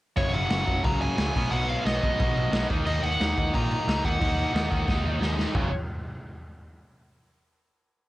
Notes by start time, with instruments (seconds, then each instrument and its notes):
0.16 picked electric bass F#1, distorted electric guitar F#2 C#3 F#3, overdriven electric guitar C#5, kick, crash
0.33 picked electric bass F#1, overdriven electric guitar F#5, crash
0.50 picked electric bass F#1, distorted electric guitar F#2 C#3 F#3, snare, crash
0.67 picked electric bass F#1, distorted electric guitar F#2 C#3 F#3, kick, crash
0.83 picked electric bass C#2, distorted electric guitar F#2 C#3 F#3, overdriven electric guitar A#5, kick, crash
1.01 overdriven electric guitar G#5, crash
1.17 picked electric bass C#2, distorted electric guitar F#2 C#3 F#3, snare, crash
1.34 picked electric bass B1, distorted electric guitar B2 F#3 B3, kick, crash
1.51 picked electric bass B1, distorted electric guitar B2 F#3 B3, overdriven electric guitar F#5, crash
1.68 overdriven electric guitar F5, crash
1.85 picked electric bass B1, distorted electric guitar B2 F#3 B3, overdriven electric guitar D#5, snare, crash
2.03 picked electric bass B1, distorted electric guitar B2 F#3 B3, kick, crash
2.19 picked electric bass B1, distorted electric guitar B2 F#3 B3, kick, crash
2.35 picked electric bass B1, crash
2.52 picked electric bass B1, distorted electric guitar B2 F#3 B3, snare, crash
2.70 picked electric bass D#2, distorted electric guitar D#3 A#3 D#4, kick, crash
2.86 picked electric bass D#2, distorted electric guitar D#3 A#3 D#4, overdriven electric guitar D#5, crash
3.03 picked electric bass D#2, overdriven electric guitar F#5, crash
3.20 picked electric bass D#2, distorted electric guitar D#3 A#3 D#4, snare, crash
3.38 picked electric bass D#2, distorted electric guitar D#3 A#3 D#4, kick, crash
3.54 picked electric bass A#2, distorted electric guitar D#3 A#3 D#4, overdriven electric guitar A#5, kick, crash
3.71 crash
3.88 picked electric bass C#2, distorted electric guitar D#3 A#3 D#4, snare, crash
4.05 picked electric bass D#2, distorted electric guitar D#3 A#3 D#4, overdriven electric guitar F#5, kick, crash
4.21 picked electric bass D#2, distorted electric guitar D#3 A#3 D#4, kick, crash
4.39 crash
4.53 picked electric bass D#2, distorted electric guitar D#3 A#3 D#4, snare, crash
4.71 picked electric bass D#2, distorted electric guitar D#3 A#3 D#4, kick, crash
4.87 picked electric bass D#2, distorted electric guitar D#3 A#3 D#4, kick, snare
5.04 picked electric bass D#2
5.21 picked electric bass D#2, distorted electric guitar D#3 A#3 D#4, snare
5.36 distorted electric guitar D#3 A#3 D#4, snare
5.54 picked electric bass F#1, distorted electric guitar F#2 C#3 F#3, kick, floor tom